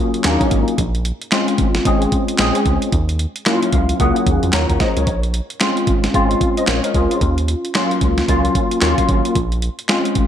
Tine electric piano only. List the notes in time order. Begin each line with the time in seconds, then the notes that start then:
Already playing: F#3 A#3 C#4 F4 G#4
0.24 F#3 A#3 C#4 D4
0.32 D#4
1.32 G#3 C4 C#4 F4
1.85 G#3 C4 C#4 G#4
2.39 G#3 C4 C#4 G#4
3.46 F#3 A#3 C#4 E4
3.53 F4
3.73 F5
3.99 F#3 A#3 C#4 G#4 F#5
4.54 A#4 C#5 A#5
4.80 C5 D#5
4.97 A#4 C#5
5.60 G#3 C4 C#4 F4
6.14 G#3 C4 C#4 F4
6.58 C5 D#5
6.68 C#5
6.84 A#4
6.95 F4 G#4
7.11 C#4 F4
7.75 F#3 A#3 C#4 F4
8.28 F#3 A#3 C#4 F4
8.82 F#3 A#3 C#4 F4
9.88 G#3 C4 C#4 F4